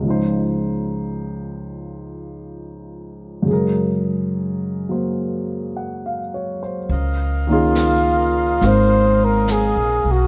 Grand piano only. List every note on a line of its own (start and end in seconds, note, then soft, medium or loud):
0.00 3.45 C#2 soft
0.00 3.44 C#3 soft
0.05 3.48 F3 soft
0.05 3.49 D#4 soft
0.10 3.50 C5 medium
3.42 6.87 F#2 soft
3.42 6.89 C#3 soft
3.47 6.90 G#3 soft
3.47 6.91 G#4 soft
3.53 6.93 A#4 medium
4.89 6.89 F#3 soft
4.89 6.89 A#3 soft
4.89 6.90 F#4 soft
4.89 6.61 C5 soft
5.77 6.21 F#5 soft
6.06 6.60 F5 soft
6.34 6.78 C#5 soft
6.63 7.07 C5 soft
7.47 10.27 D#3 medium
7.47 10.27 A#3 soft
7.47 10.27 C#4 soft
7.47 8.60 D#4 soft
7.53 10.27 G#4 medium
8.61 10.27 C4 soft
8.61 10.27 D#4 soft
8.61 10.27 A#4 soft
8.61 10.27 F5 soft